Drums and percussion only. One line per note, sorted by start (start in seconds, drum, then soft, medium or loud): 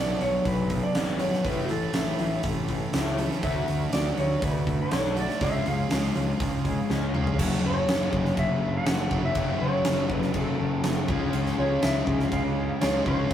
0.21 open hi-hat soft
0.45 kick loud
0.45 open hi-hat medium
0.70 kick medium
0.70 open hi-hat medium
0.95 snare medium
0.95 open hi-hat medium
1.08 snare soft
1.19 open hi-hat medium
1.32 snare soft
1.45 kick loud
1.45 open hi-hat medium
1.69 open hi-hat medium
1.94 snare loud
1.94 open hi-hat medium
2.19 open hi-hat medium
2.43 kick loud
2.43 open hi-hat medium
2.68 kick medium
2.68 open hi-hat medium
2.93 snare loud
2.93 open hi-hat medium
3.06 snare soft
3.18 open hi-hat medium
3.31 snare soft
3.43 kick loud
3.43 open hi-hat medium
3.68 open hi-hat medium
3.93 snare loud
3.93 open hi-hat medium
4.18 open hi-hat medium
4.42 kick loud
4.42 open hi-hat medium
4.67 kick medium
4.67 open hi-hat soft
4.91 snare loud
4.91 open hi-hat medium
5.05 snare soft
5.16 open hi-hat medium
5.29 snare soft
5.41 kick loud
5.41 open hi-hat medium
5.66 open hi-hat medium
5.91 snare loud
5.91 open hi-hat medium
6.16 open hi-hat medium
6.40 kick loud
6.40 open hi-hat medium
6.65 kick medium
6.65 open hi-hat medium
6.90 snare medium
7.15 mid tom medium
7.27 floor tom medium
7.39 kick loud
7.39 crash loud
7.39 crash medium
7.52 snare soft
7.88 snare loud
7.88 crash medium
8.13 kick medium
8.25 snare soft
8.37 kick medium
8.37 crash medium
8.86 snare loud
8.86 crash medium
9.11 kick medium
9.35 kick loud
9.35 crash medium
9.85 snare loud
9.85 crash medium
10.10 kick medium
10.22 snare soft
10.34 kick medium
10.34 crash medium
10.84 snare loud
10.84 crash medium
11.08 kick loud
11.33 crash medium
11.46 snare soft
11.82 snare loud
11.82 crash medium
12.07 kick medium
12.20 snare soft
12.32 kick medium
12.32 crash medium
12.81 snare loud
12.81 crash medium
13.06 kick medium